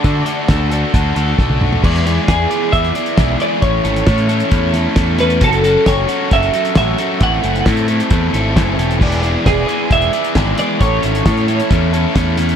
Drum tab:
CC |----------------|x---------------|----------------|----------------|
HH |x-x-x-x-x-x-----|-xx-x-x-xxxxx-x-|x-xxxxxxx-x-x-xx|xxx-x-x-xxxxx-x-|
SD |----o-------o---|----o-------o---|----o-----o-o-o-|----o-------o---|
T1 |-------------o--|----------------|----------------|----------------|
T2 |--------------o-|----------------|----------------|----------------|
FT |---------------o|----------------|----------------|----------------|
BD |o---o---o---o---|o---o---o---o---|o---o---o---o---|o---o---o---o---|

CC |----------------|x---------------|----------------|
HH |x-xxxxxxx-x-x-xx|-xx-x-x-xxxxx-x-|x-xxxxxxx-x-x-xx|
SD |----o-----o-o---|----o-------o---|----o-------o-o-|
T1 |----------------|----------------|----------------|
T2 |----------------|----------------|----------------|
FT |----------------|----------------|----------------|
BD |o---o---o---o---|o---o---o---o---|o---o---o---o---|